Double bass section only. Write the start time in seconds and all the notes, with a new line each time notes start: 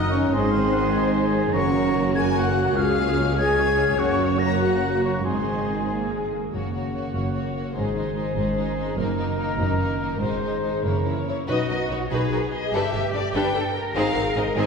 Already playing: F#1
0.32 G#1
1.54 F#1
2.76 C#2
3.98 F#1
5.25 G#1
6.52 F#1
7.14 F#1
7.75 G#1
8.36 G#1
8.97 F#1
9.58 F#1
10.20 G#1
10.84 F#1
11.47 B1
11.69 B1
11.89 B1
12.11 B1
12.31 B1
12.73 G1
12.93 G1
13.13 G1
13.33 G1
13.54 G1
13.94 G#1
14.15 G#1
14.35 G#1
14.55 G#1